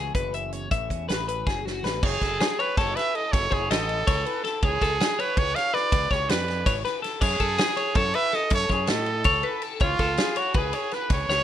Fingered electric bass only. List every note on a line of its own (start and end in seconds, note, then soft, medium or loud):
0.00 0.10 C#2 loud
0.15 0.67 F#1 medium
0.71 0.88 A1 medium
0.90 1.07 E2 medium
1.09 1.43 A1 loud
1.46 1.80 F#1 medium
1.83 2.00 A1 medium
2.03 2.19 F#1 loud
2.21 2.38 F#1 medium
2.77 2.94 F#1 loud
3.33 3.50 F#1 loud
3.52 3.68 F#1 loud
3.71 4.04 A1 loud
4.07 4.24 C#2 loud
4.62 4.79 C#2 loud
4.82 4.98 C#2 loud
5.37 5.54 C#2 loud
5.92 6.09 C#2 loud
6.11 6.27 C#2 medium
6.29 6.63 F2 loud
6.66 6.83 G#1 loud
7.21 7.38 F#2 loud
7.40 7.57 F#2 medium
7.95 8.12 F#2 loud
8.51 8.68 F#2 loud
8.69 8.86 F#2 loud
8.90 9.23 A2 loud
9.25 9.42 C#2 loud
9.81 9.98 C#2 loud
9.99 10.16 C#2 loud
10.55 10.72 C#2 loud
11.10 11.27 C#2 loud
11.29 11.44 C#2 loud